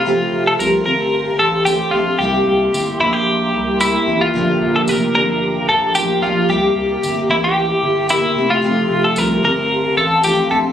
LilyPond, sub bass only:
\new Staff \with { instrumentName = "Sub bass" } { \clef bass \time 4/4 \key c \mixolydian \tempo 4 = 112 f,,8 f,,8 c,8 g,,4 a,,4 bes,,8 | c,8 c,8 g,,8 bes,,4 c,4 a,,8 | bes,,8 bes,,8 f,,8 g,,4 bes,,4 bes,,8 | c,8 c,8 g,,8 a,,4 g,,4 f,,8~ |
f,,8 f,,8 c,8 g,,4 a,,4 bes,,8 | }